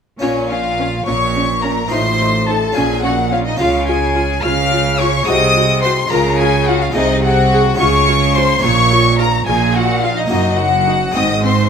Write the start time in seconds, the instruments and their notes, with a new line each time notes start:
0.19 double bass section A#1, cello section A#2, harpsichord A#2 C#4 F4, violin section C#4 C#5, viola section C#4, violin C#5
0.49 viola section C#4, violin section F4 F5, violin F5
0.79 viola section C#4
1.06 double bass section A#1, harpsichord A#2, cello section A#2, viola section C#4, violin section C#5 C#6, violin C#6
1.36 viola section C#4
1.62 viola section C#4, violin section A#4 A#5, violin A#5
1.88 double bass section A1, cello section A2, harpsichord A2 D#4 F4, violin section C5 C6, violin C6
1.92 viola section D#4
2.20 viola section D#4
2.46 viola section D#4, violin section A4 A5, violin A5
2.72 double bass section A#1, harpsichord A#2 C#4 F4, cello section A#2, violin section G#4 G#5, violin G#5
2.76 viola section C#4
3.02 viola section C#4, violin section F#4 F#5, violin F#5
3.31 viola section C#4, violin section F4 F5, violin F5
3.45 violin section D#4 D#5, violin D#5
3.57 double bass section C#2, harpsichord C#3 C#4 F4, cello section C#3, viola section F4, violin section F4 F5, violin F5
3.88 viola section F4, violin section G#4 G#5, violin G#5
4.15 viola section F4
4.43 double bass section C#2, cello section C#3, harpsichord C#3, viola section F4, violin section F5 F6, violin F6
4.71 viola section F4
4.99 viola section F4, violin section C#5 C#6, violin C#6
5.24 double bass section C2, cello section C3, harpsichord G#3 D#4 F#4, violin section D#5 D#6, violin D#6
5.28 harpsichord C3, viola section F#4
5.55 viola section F#4
5.82 viola section F#4, violin section C5 C6, violin C6
6.07 double bass section C#2, cello section C#3, harpsichord G#3 C#4 F4, violin A#5, violin section A#5
6.11 harpsichord C#3, viola section F4, violin section A#4
6.38 viola section F4, violin section G#4 G#5, violin G#5
6.66 viola section F4, violin section F#4 F#5, violin F#5
6.81 violin section F4 F5, violin F5
6.91 double bass section C2, cello section C3, harpsichord G#3 D#4, violin D#5
6.95 harpsichord C3, violin section D#4 D#5, viola section G#4
7.23 violin section F#4 F#5, viola section G#4, violin F#5
7.52 viola section G#4
7.74 harpsichord G#3 C#4 F4, violin section C#5 C#6
7.78 double bass section C#2, cello section C#3, harpsichord C#3, viola section F4, violin C#6
8.07 viola section F4
8.34 viola section F4, violin section C5 C6, violin C6
8.59 double bass section A#1, cello section A#2, harpsichord A#3 C#4 F4, violin section C#5
8.63 harpsichord A#2, viola section F4, violin C#6, violin section C#6
8.91 viola section F4
9.18 viola section F4, violin section A#4 A#5, violin A#5
9.46 double bass section A#1, cello section A#2, harpsichord A#2, viola section F4, violin section G#4 G#5, violin G#5
9.74 viola section F4, violin section F#4 F#5, violin F#5
10.02 violin section F4 F5, viola section F4, violin F5
10.15 violin section D#4 D#5, violin D#5
10.26 harpsichord A#3 D#4 F#4, violin section D#5
10.30 double bass section F#1, cello section F#2, harpsichord F#2, violin section D#4, viola section D#4, violin D#5
10.58 viola section D#4, violin section F#4 F#5, violin F#5
10.87 viola section D#4
11.11 harpsichord G#3 C4 F#4
11.15 double bass section G#1, harpsichord G#2, cello section G#2, viola section C4, violin section D#5 D#6, violin D#6
11.44 viola section C4, violin section C5 C6, violin C6